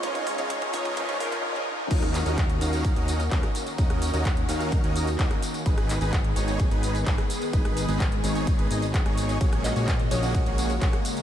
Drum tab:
CC |----------------|x---------------|----------------|----------------|
RD |----------------|----------------|----------------|----------------|
HH |xxoxxxoxxxox----|xxoxxxoxxxoxxxox|xxoxxxoxxxoxxxox|xxoxxxoxxxoxxxox|
TB |----------------|x-xxx-xxx-xxx-xx|x-xxx-xxx-xxx-xx|x-xxx-xxx-xxx-xx|
CP |----------------|--x-x-------x---|----x-------x---|--x-x-------x---|
SD |----------------|-r-----------r--|-r-----------r--|-r-----------r--|
BD |oooooooooooo----|o---o---o---o---|o---o---o---o---|o---o---o---o---|

CC |----------------|----------------|
RD |----------------|x-x-x-x-x-x-x-x-|
HH |xxoxxxoxxxoxxxox|xxoxxxoxxxoxxxox|
TB |x-xxx-xxx-xxx-xx|x-xxx-xxx-xxx-xx|
CP |----x-------x---|--x-x-------x---|
SD |-r-----------r--|-r-----------r--|
BD |o---o---o---o---|o---o---o---o---|